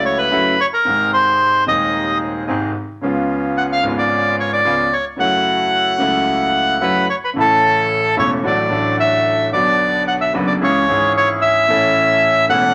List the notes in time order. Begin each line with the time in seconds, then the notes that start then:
Already playing: C#2 C#3 F#3 A3 E4 F#4
0.05 C#5
0.18 B4
0.31 F#2 C#3 F#3 A3 E4 F#4
0.60 C#5
0.74 A#4
0.84 G#1 G#2 C3 D#3 C4 D#4 G#4
0.88 G#3 D#4
1.13 C5
1.66 D#1 D#2 C3 D#3 G#3 C4 D#4 G#4 D#5
2.47 G#1 G#2 C3 D#3 G#3 C4 D#4 G#4
3.01 C#2 C#3 G#3 B3 C#4 F4
3.06 F4
3.57 F#5
3.73 F5
3.82 G#1 G#2 C#3 G#3 B3 C#4 F4
3.98 D5
4.40 C#5
4.53 D5
4.65 C#2 C#3 G#3 B3 C#4 F4
4.93 C#5
5.16 F#2 C#3 F#3 A3 E4 F#4 F#5
5.20 E4
5.98 C#2 C#3 F#3 A3 E4 F#4
6.80 F#2 C#3 F#3 A3 E4 F#4 B4
7.10 C#5
7.24 B4
7.34 A1 A2 C#3 E3 A3 C#4 E4
7.38 E4 A4
8.16 E1 E2 C#3 E3 A3 C#4 E4 C#5
8.43 A1 A2 D3 F#3 A3 D4 F#4 D5
8.69 A1 A2 D3 F#3 A3 D4 F#4
8.73 F#4
9.00 E5
9.52 B1 B2 D3 F#3 B3 D4 F#4 D5
9.56 F#4
10.08 F#5
10.21 E5
10.33 F#1 F#2 D3 F#3 B3 D4 F#4
10.47 D5
10.60 C#2 C#3 E3 G#3 C#4 E4 G#4 C#5
10.87 G#1 G#2 E3 G#3 C#4 E4 G#4
10.91 G#4
11.17 C#5
11.42 E5
11.67 A1 A2 E3 A3 C#4 E4 A4
12.49 E1 E2 E3 A3 C#4 E4 A4 F#5